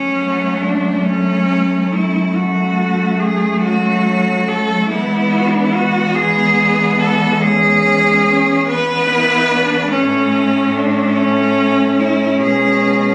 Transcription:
Already playing: F#2 F#3 A3 C#4
0.61 D4
1.03 A3 C#4
1.92 E4
2.35 A3 F#4
3.20 G#4
3.63 F#3 F#4
4.48 A4
4.89 E2 G#3 B3 E4
5.38 F#4
5.47 E4
5.55 D4
5.65 E4
5.74 F#4
6.15 G#3 B3 G#4
6.99 A4
7.41 G#3 C#4 G#4
7.86 G#3
8.27 C#4
8.67 B3 B4
9.09 E4
9.51 D4
9.91 A2 A3 C#4
10.76 D4
11.16 C#4
11.99 E4
12.41 B2 G#3 G#4

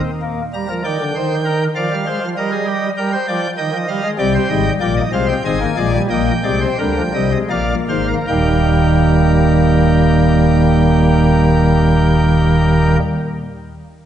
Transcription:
Already playing: C4
0.22 A#3
0.54 G3 A#5
0.69 F3 A#4
0.84 D#3 D5 G5
1.00 D3
1.15 D#3 C5
1.45 A#4
1.75 F3 D5 F5
1.92 G3
2.06 G#3 C5
2.22 F3
2.37 G3 A#4 D#5
2.52 G#4
2.67 G4
2.98 G3 A#4 G5
3.13 C5
3.28 F3 D5
3.58 D#3 D#5 G5
3.73 F3
3.88 G3 F5
4.03 G#3
4.19 C2 C3 G3 D5 G5
4.35 C5
4.50 G#1 G#2 D#5
4.81 A#1 A#2 A#3 D5 G5
4.97 D#5
5.13 C2 C3 G#3 C5 F5
5.29 G5
5.45 G#1 G#2 C4 D#5 G#5
5.61 A#3
5.77 A#1 A#2 G#3 D5
5.93 G3
6.10 A#1 A#2 A#3 D#5 G5
6.44 C2 C3 G#3 D5
6.61 C5
6.79 D2 D3 G3 A#4
6.96 F3
7.14 C2 C3 G3 D#5
7.32 G#3
7.50 A#1 A#2 A#3 D5 F5
7.89 G#1 G#2 C5 F5
8.08 A#4
8.28 D#1 D#2 D#3 G3 A#3 A#4 G5

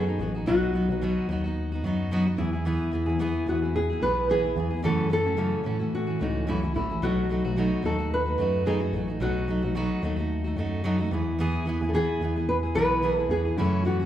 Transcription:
Already playing: F#2 G#4
0.07 B3 D#4 F#4
0.19 A1 F#3 B3 D#4 F#4
0.34 B3 D#4 F#4
0.46 B1 B2 F#3 B3 D#4 F#4
0.73 F#3 B3 D#4 F#4
0.89 B1 B3 D#4 F#4
1.01 B2 F#3 B3 D#4 F#4
1.29 D#2 F#3 B3 D#4 F#4
1.44 B3 D#4 F#4
1.72 B3 D#4 F#4
1.84 F#2 F#3 B3 D#4 F#4
2.11 B2 F#3 B3 D#4 F#4
2.26 B3 D#4 F#4
2.37 E2 E3 B3 E4 G#4
2.53 B3 E4 G#4
2.65 E3 B3 E4 G#4
2.92 E3 B3 E4 G#4
3.06 E2 B3 E4 G#4
3.19 E3 B3 E4 G#4
3.46 E2 E3 B3 E4 F#4 G#4
3.62 B3 E4 G#4
3.76 G#4
3.90 B3 E4 G#4
4.02 B1 E3 B3 E4 G#4 B4
4.29 E3 B3 E4 G#4
4.43 B3 E4 G#4
4.56 E2 E3 B3 E4 G#4
4.70 B3 E4 G#4
4.83 F#2 C#3 E3 A3 C#4 F#4 A4
5.09 E3 A3 C#4 F#4 A4
5.25 F#2 E3 A3 C#4 F#4
5.36 F#2 C#3 E3 A3 C#4 F#4
5.64 A2 E3 A3 C#4 F#4
5.79 E3 A3 C#4 F#4
5.95 F#4
6.07 E3 A3 C#4 F#4
6.19 C#2 E3 A3 C#4 D#4 F#4
6.47 F#2 C#3 E3 A3 C#4 E4 F#4
6.62 E3 A3 C#4 F#4
6.74 A1 E3 A3 C#4 E4 F#4
6.89 E3 A3 C#4 F#4
7.02 B1 B2 F#3 A3 D#4 F#4
7.29 F#3 A3 D#4 F#4
7.45 B1 A3 D#4 F#4
7.56 B2 F#3 A3 D#4 F#4
7.82 D#2 F#3 A3 D#4 F#4 A4
7.98 A3 D#4 F#4
8.14 B4
8.25 A3 D#4 F#4
8.38 F#2 F#3 A3 D#4 F#4
8.66 B2 F#3 A3 D#4 F#4 G#4
8.80 A3 D#4 F#4
8.93 A1 F#3 A3 D#4 F#4
9.08 A3 D#4 F#4
9.20 B1 B2 F#3 A3 D#4 F#4
9.48 F#3 A3 D#4 F#4
9.62 B1 A3 D#4 F#4
9.75 B2 F#3 A3 D#4 F#4
10.02 D#2 F#3 A3 D#4 F#4
10.16 A3 D#4 F#4
10.44 A3 D#4 F#4
10.56 F#2 F#3 A3 D#4 F#4
10.84 B2 F#3 A3 D#4 F#4
10.98 A3 D#4 F#4
11.11 E2 E3 B3 E4 G#4
11.39 E3 B3 E4 G#4
11.65 E3 B3 E4 G#4
11.81 E2 B3 E4 G#4
11.89 A4
11.93 E3 B3 E4 G#4
12.21 E2 E3 B3 E4 G#4
12.36 B3 E4 G#4
12.49 B4
12.63 B3 E4 G#4
12.75 B1 E3 B3 E4 G#4 B4
13.02 E3 B3 E4 G#4
13.17 B3 E4 G#4
13.29 E2 E3 B3 E4 G#4
13.45 B3 E4 G#4
13.57 F#2 C#3 E3 A3 C#4 E4 F#4
13.84 E3 A3 C#4 F#4
13.98 F#2 A3 C#4 F#4

